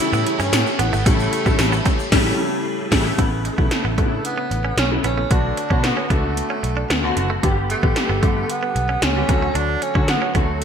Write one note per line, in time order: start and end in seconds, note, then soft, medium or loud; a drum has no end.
0.00 0.51 A2 medium
0.00 1.06 C#3 loud
0.00 1.06 E3 medium
0.00 0.53 E3 medium
0.00 1.06 G3 medium
0.00 1.07 A3 medium
0.00 0.54 A3 medium
0.00 0.42 E4 loud
0.00 1.07 E4 loud
0.00 3.14 E4 medium
0.00 3.14 C#5 medium
0.00 3.14 G5 medium
0.00 0.75 A5 medium
0.00 closed hi-hat medium
0.00 shaker medium
0.13 0.23 A2 loud
0.13 0.21 B3 medium
0.13 shaker medium
0.26 muted clean electric guitar stroke soft
0.26 closed hi-hat medium
0.39 0.49 G2 medium
0.39 0.48 C#4 medium
0.39 0.79 C#4 loud
0.39 shaker medium
0.52 1.04 A2 medium
0.52 0.63 A2 loud
0.52 1.07 E3 medium
0.52 1.09 A3 medium
0.52 muted clean electric guitar stroke soft
0.52 snare loud
0.52 closed hi-hat loud
0.52 tambourine medium
0.52 shaker medium
0.66 shaker soft
0.79 0.89 A1 medium
0.79 0.87 B3 medium
0.79 1.08 B3 medium
0.79 3.16 B5 medium
0.79 closed hi-hat medium
0.93 1.03 G#1 medium
0.93 1.01 A3 medium
0.93 shaker soft
1.05 1.26 A1 loud
1.05 2.10 A2 medium
1.05 1.44 C#3 medium
1.05 1.44 E3 medium
1.05 2.12 E3 medium
1.05 1.44 G3 medium
1.05 2.12 A3 medium
1.05 1.14 A3 medium
1.05 1.44 A3 medium
1.05 1.44 E4 medium
1.05 kick loud
1.05 closed hi-hat medium
1.05 shaker medium
1.09 2.14 A3 medium
1.20 shaker soft
1.33 muted clean electric guitar stroke soft
1.33 closed hi-hat medium
1.33 shaker soft
1.45 1.56 A1 medium
1.45 2.10 C#3 medium
1.45 2.11 E3 medium
1.45 2.11 G3 medium
1.45 2.11 A3 medium
1.45 1.54 B3 medium
1.45 2.11 E4 medium
1.45 kick medium
1.45 shaker soft
1.59 1.79 A1 loud
1.59 muted clean electric guitar stroke soft
1.59 snare loud
1.59 closed hi-hat medium
1.59 tambourine medium
1.59 shaker medium
1.72 1.81 B3 medium
1.72 shaker medium
1.86 1.94 A3 medium
1.86 kick medium
1.86 closed hi-hat medium
1.86 shaker medium
1.99 shaker medium
2.11 2.30 A1 loud
2.11 2.30 A2 loud
2.11 2.30 C#3 loud
2.11 2.30 E3 loud
2.11 2.31 E3 loud
2.11 2.30 G3 loud
2.11 2.31 A3 loud
2.11 2.31 E4 loud
2.11 kick loud
2.11 snare loud
2.11 crash medium
2.91 3.10 A1 loud
2.91 3.10 A2 loud
2.91 3.10 C#3 loud
2.91 3.10 E3 loud
2.91 3.11 E3 loud
2.91 3.10 G3 loud
2.91 3.10 A3 loud
2.91 3.11 A3 loud
2.91 3.10 E4 loud
2.91 kick loud
2.91 snare loud
2.91 crash medium
3.17 3.48 A1 loud
3.17 3.56 C#3 medium
3.17 3.56 A3 medium
3.17 3.27 A3 medium
3.17 3.56 B3 medium
3.17 3.56 E4 medium
3.17 kick loud
3.17 closed hi-hat medium
3.45 4.21 A3 medium
3.45 muted clean electric guitar stroke soft
3.45 closed hi-hat medium
3.57 3.68 B1 medium
3.57 3.96 C#3 medium
3.57 3.96 A3 medium
3.57 3.66 B3 medium
3.57 3.96 B3 medium
3.57 3.96 E4 medium
3.57 kick medium
3.71 muted clean electric guitar stroke soft
3.71 snare medium
3.71 closed hi-hat medium
3.85 3.99 A1 medium
3.85 3.93 B3 medium
3.97 4.18 A2 medium
3.97 4.86 C#3 medium
3.97 4.86 A3 medium
3.97 4.06 A3 medium
3.97 4.86 B3 medium
3.97 4.05 D4 medium
3.97 kick medium
3.97 closed hi-hat medium
4.05 4.90 E4 medium
4.25 4.74 B3 medium
4.25 closed hi-hat medium
4.38 4.46 B3 medium
4.51 4.71 A1 medium
4.51 muted clean electric guitar stroke soft
4.51 closed hi-hat medium
4.65 4.73 C#4 medium
4.77 4.97 B1 medium
4.77 4.90 C#4 medium
4.77 muted clean electric guitar stroke soft
4.77 snare loud
4.77 closed hi-hat medium
4.90 5.28 C#3 medium
4.90 5.29 A3 medium
4.90 5.29 B3 medium
4.90 5.29 E4 medium
5.04 5.24 A#1 medium
5.04 5.12 B3 medium
5.04 5.34 C#4 medium
5.04 closed hi-hat medium
5.18 5.26 A3 medium
5.30 5.51 B1 medium
5.30 5.68 D3 medium
5.30 5.69 A3 medium
5.30 5.69 B3 medium
5.30 5.39 B3 medium
5.30 5.87 D4 loud
5.30 5.69 F#4 medium
5.30 kick loud
5.30 closed hi-hat medium
5.57 muted clean electric guitar stroke soft
5.57 closed hi-hat medium
5.70 5.91 B2 medium
5.70 6.08 D3 medium
5.70 6.08 A3 medium
5.70 6.09 B3 medium
5.70 5.78 C#4 medium
5.70 6.09 F#4 medium
5.70 kick medium
5.84 6.13 B3 medium
5.84 muted clean electric guitar stroke soft
5.84 snare medium
5.84 closed hi-hat medium
5.97 6.05 C#4 medium
6.10 6.40 C#2 medium
6.10 6.99 A3 medium
6.10 7.17 A3 medium
6.10 6.18 B3 medium
6.10 6.99 B3 medium
6.10 6.98 D4 medium
6.10 6.99 F#4 medium
6.10 kick medium
6.10 closed hi-hat medium
6.37 closed hi-hat medium
6.50 6.58 C#4 medium
6.63 6.83 B1 medium
6.63 muted clean electric guitar stroke soft
6.63 closed hi-hat medium
6.77 6.85 D4 medium
6.90 7.10 D2 medium
6.90 6.98 B3 medium
6.90 snare loud
6.90 closed hi-hat medium
7.03 7.41 D3 medium
7.03 7.41 A3 medium
7.03 7.41 B3 medium
7.03 7.42 F#4 loud
7.17 7.37 F#1 medium
7.17 muted clean electric guitar stroke soft
7.17 closed hi-hat medium
7.30 7.38 A3 medium
7.43 7.73 G1 medium
7.43 7.81 D3 medium
7.43 7.81 G3 medium
7.43 7.51 G3 medium
7.43 7.81 B3 medium
7.43 7.81 G4 medium
7.43 kick loud
7.43 closed hi-hat medium
7.70 8.52 A3 medium
7.70 muted clean electric guitar stroke soft
7.70 closed hi-hat medium
7.83 7.93 A1 medium
7.83 8.21 D3 medium
7.83 8.21 G3 medium
7.83 7.91 B3 medium
7.83 8.21 B3 medium
7.83 8.21 G4 medium
7.83 kick medium
7.96 muted clean electric guitar stroke soft
7.96 snare medium
7.96 closed hi-hat medium
8.09 8.19 G1 medium
8.09 8.18 B3 medium
8.23 8.43 G2 medium
8.23 9.11 D3 medium
8.23 9.11 G3 medium
8.23 8.31 A3 medium
8.23 9.11 B3 medium
8.23 9.12 G4 medium
8.23 kick medium
8.23 closed hi-hat medium
8.50 9.04 B3 medium
8.50 closed hi-hat medium
8.63 8.71 B3 medium
8.76 8.96 B1 medium
8.76 muted clean electric guitar stroke soft
8.76 closed hi-hat medium
8.89 8.97 C#4 medium
9.02 9.22 C#2 medium
9.02 9.58 C#4 loud
9.02 muted clean electric guitar stroke soft
9.02 snare loud
9.02 closed hi-hat medium
9.15 9.27 D3 medium
9.15 9.29 G3 medium
9.15 9.29 B3 medium
9.15 9.29 G4 medium
9.29 9.49 D2 medium
9.29 9.92 D3 medium
9.29 9.92 F#3 medium
9.29 9.92 A3 medium
9.29 9.37 B3 medium
9.29 9.92 F#4 medium
9.29 kick medium
9.29 closed hi-hat medium
9.42 9.50 A3 medium
9.55 9.75 D2 loud
9.55 9.63 D4 medium
9.55 9.84 D4 loud
9.55 closed hi-hat medium
9.82 10.09 C#4 loud
9.82 muted clean electric guitar stroke soft
9.82 closed hi-hat medium
9.95 10.33 D3 medium
9.95 10.15 D3 medium
9.95 10.33 F#3 medium
9.95 10.33 A3 medium
9.95 10.03 C#4 medium
9.95 10.33 F#4 medium
9.95 kick medium
10.08 10.37 B3 medium
10.08 muted clean electric guitar stroke soft
10.08 snare medium
10.08 closed hi-hat medium
10.22 10.30 C#4 medium
10.35 10.64 D2 medium
10.35 10.64 D3 medium
10.35 10.64 F#3 medium
10.35 10.64 A3 medium
10.35 10.43 B3 medium
10.35 10.64 F#4 medium
10.35 kick medium
10.35 closed hi-hat medium